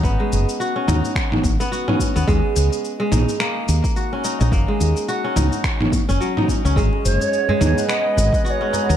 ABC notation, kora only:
X:1
M:4/4
L:1/16
Q:"Swing 16ths" 1/4=107
K:G#m
V:1 name="Kora"
B, G, z2 F C D4 z B, F C z B, | G,4 z G, D2 A,4 F C D D | A, G, z2 F C D4 z C F, D z C | G,4 z G, D2 B,4 F C D D |]